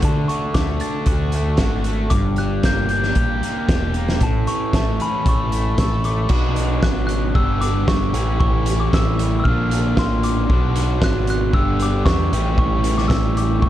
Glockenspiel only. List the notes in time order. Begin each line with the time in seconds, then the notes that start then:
0.05 A5
0.28 C#6
0.54 D6
0.81 A6
2.10 D6
2.38 F#6
2.65 G6
2.91 G6
4.23 A5
4.48 C#6
4.75 A5
5.02 B5
5.29 C#6
5.80 C#6
6.05 D6
6.83 F#6
7.07 F#6
7.35 E6
7.61 D6
7.88 C#6
8.40 C#6
8.80 D6
8.94 E6
9.40 E6
9.44 F6
9.99 C6
10.24 D6
11.04 F#6
11.30 F#6
11.54 E6
11.82 D6
12.05 C#6
12.59 C#6
12.98 D6
13.08 E6
13.37 D6
13.62 C#6